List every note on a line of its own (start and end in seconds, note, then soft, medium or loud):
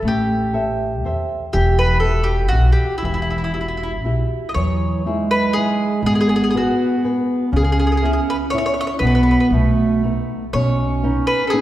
0.02 1.04 A1 medium
0.02 0.53 A3 medium
0.08 1.28 G4 medium
0.53 0.94 A4 soft
0.53 0.94 C5 soft
0.53 0.94 E5 soft
1.04 1.21 E2 medium
1.04 1.44 A4 soft
1.04 1.45 C5 soft
1.04 1.45 E5 soft
1.53 2.53 E1 medium
1.53 2.02 E3 medium
1.53 1.78 G4 medium
1.79 1.99 B4 medium
2.00 2.42 E4 soft
2.00 2.42 F#4 soft
2.00 2.43 G4 soft
2.00 2.26 A4 medium
2.24 2.48 G4 medium
2.48 2.92 E4 soft
2.48 2.72 F#4 medium
2.53 2.70 B1 medium
2.53 2.93 F#4 soft
2.53 2.93 G4 soft
2.72 2.97 G4 medium
2.98 3.04 E4 medium
3.02 4.03 E1 medium
3.02 3.52 E3 medium
3.02 3.13 E4 soft
3.14 3.21 E4 medium
3.22 3.29 E4 soft
3.30 3.37 E4 soft
3.38 3.43 E4 soft
3.44 3.52 E4 soft
3.53 3.60 E4 soft
3.53 3.94 E4 soft
3.53 3.94 F#4 soft
3.53 3.94 G4 soft
3.61 3.67 E4 soft
3.68 3.76 E4 soft
3.77 3.82 E4 soft
3.83 3.91 E4 soft
4.03 4.21 B1 medium
4.03 4.45 E4 soft
4.03 4.45 F#4 soft
4.03 4.45 G4 soft
4.49 4.54 D#5 soft
4.54 5.20 E2 medium
4.54 5.04 E3 medium
4.54 5.01 F#3 medium
4.54 5.27 C#5 medium
5.05 6.00 G#3 medium
5.05 5.45 D#4 soft
5.05 5.46 E4 soft
5.05 5.46 G#4 soft
5.31 5.53 B4 medium
5.53 5.95 D#4 soft
5.53 5.95 E4 soft
5.53 6.00 G#4 medium
5.53 5.95 G#4 soft
6.03 6.67 G#1 medium
6.03 6.53 G#3 medium
6.03 7.48 B3 medium
6.03 6.13 G#4 medium
6.15 6.19 G#4 soft
6.21 6.27 G#4 medium
6.29 6.35 G#4 medium
6.36 6.42 G#4 medium
6.44 6.49 G#4 medium
6.51 6.94 F#4 soft
6.51 6.55 G#4 soft
6.55 7.02 F#4 medium
6.55 6.94 G#4 soft
6.55 6.94 B4 medium
7.04 7.43 F#4 soft
7.04 7.43 G#4 soft
7.04 7.44 B4 medium
7.51 8.17 C#2 medium
7.51 8.00 C#3 medium
7.51 8.72 C#4 loud
7.56 7.62 G#4 medium
7.64 7.70 G#4 soft
7.72 7.78 G#4 medium
7.80 7.84 G#4 medium
7.87 7.91 G#4 medium
7.92 7.96 G#4 soft
7.97 8.04 G#4 medium
8.02 8.42 B3 soft
8.02 8.42 C#4 soft
8.02 8.42 E4 medium
8.02 8.12 G#4 soft
8.13 8.20 G#4 soft
8.30 8.36 B4 medium
8.50 8.93 B3 soft
8.50 8.93 C#4 soft
8.50 8.93 E4 soft
8.50 8.57 C#5 medium
8.58 8.65 C#5 medium
8.66 8.73 C#5 medium
8.74 8.79 C#5 medium
8.81 8.86 C#5 medium
8.87 8.94 C#5 medium
8.99 9.33 B1 medium
8.99 9.51 B2 medium
8.99 9.54 B3 loud
8.99 9.06 B4 medium
9.07 9.14 B4 medium
9.15 9.22 B4 medium
9.23 9.30 B4 medium
9.31 9.38 B4 medium
9.40 9.46 B4 medium
9.50 10.17 B1 medium
9.50 10.02 B2 medium
9.50 10.30 A3 medium
10.03 10.43 A3 soft
10.03 10.44 B3 soft
10.03 10.44 D#4 soft
10.53 11.18 B1 medium
10.53 11.02 B2 soft
10.53 11.54 C#4 medium
10.53 11.26 C#5 medium
11.03 11.43 B3 soft
11.03 11.44 C#4 soft
11.03 11.44 D#4 medium
11.27 11.44 B4 medium
11.47 11.61 G#4 medium
11.47 11.54 A4 medium
11.53 11.61 B3 soft
11.53 11.61 C#4 soft
11.53 11.61 D#4 medium
11.53 11.61 D#4 soft